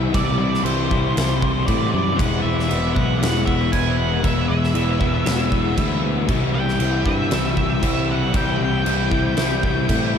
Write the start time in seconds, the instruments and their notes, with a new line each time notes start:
Already playing: picked electric bass C2, overdriven electric guitar E3 G3 C4 E4
0.13 picked electric bass C2, overdriven electric guitar C3 E3 G3 C4 E4, lead electric guitar D5, kick, crash
0.39 picked electric bass C2, lead electric guitar D5
0.54 snare
0.64 picked electric bass C2, overdriven electric guitar E3 G3 C4 E4, lead electric guitar C5, crash
0.90 overdriven electric guitar G3 C4 E4, kick
1.15 picked electric bass C2, overdriven electric guitar C3 E3 G3 C4 E4, snare, crash
1.42 kick
1.66 picked electric bass A2, overdriven electric guitar E3 G3 C4 E4, lead electric guitar D5, kick, crash
1.92 picked electric bass F#2, lead electric guitar D5
2.17 picked electric bass E1, overdriven electric guitar E2 B2 E3 G#3 B3 E4, lead electric guitar F#5, kick, crash
2.42 picked electric bass E1, lead electric guitar E5
2.59 snare
2.69 picked electric bass E1, overdriven electric guitar E3 G#3 B3 E4, crash
2.95 picked electric bass B1, overdriven electric guitar E3 G#3 B3 E4, lead electric guitar F#5, kick
3.19 picked electric bass E1, overdriven electric guitar E2 B2 E3 G#3 B3 E4, lead electric guitar F#5, crash
3.24 snare
3.46 lead electric guitar E5, kick
3.71 picked electric bass E1, overdriven electric guitar E3 G#3 B3 E4, lead electric guitar G#5, kick, crash
3.98 lead electric guitar F#5
4.23 picked electric bass E1, overdriven electric guitar E2 B2 E3 G#3 B3 E4, lead electric guitar E5, kick, crash
4.49 picked electric bass E1, lead electric guitar E5
4.64 snare
4.74 picked electric bass E1, overdriven electric guitar E3 G#3 B3 E4, crash
5.00 overdriven electric guitar E3 G#3 B3 E4, kick
5.24 picked electric bass E1, overdriven electric guitar E2 B2 E3 G#3 B3 E4, snare, crash
5.52 kick
5.77 picked electric bass D2, overdriven electric guitar E3 G#3 B3 E4, kick, crash
6.04 picked electric bass D2
6.28 picked electric bass C2, overdriven electric guitar C3 E3 G3 C4 E4, kick, crash
6.54 picked electric bass C2, lead electric guitar G5
6.68 snare
6.79 picked electric bass C2, overdriven electric guitar E3 G3 C4 E4, crash
7.05 picked electric bass G2, overdriven electric guitar G3 C4 E4, lead electric guitar E5, kick
7.30 picked electric bass C2, overdriven electric guitar C3 E3 G3 C4 E4, snare, crash
7.57 kick
7.82 picked electric bass C2, overdriven electric guitar E3 G3 C4 E4, kick, crash
8.12 lead electric guitar F#5
8.33 picked electric bass C2, overdriven electric guitar C3 E3 G3 C4 E4, lead electric guitar G5, kick, crash
8.60 picked electric bass C2, lead electric guitar G5
8.84 picked electric bass C2, overdriven electric guitar E3 G3 C4 E4, crash
9.10 overdriven electric guitar G3 C4 E4, kick
9.35 picked electric bass C2, overdriven electric guitar C3 E3 G3 C4 E4, snare, crash
9.63 kick
9.87 picked electric bass A2, overdriven electric guitar E3 G3 C4 E4, kick, crash
10.14 picked electric bass D#2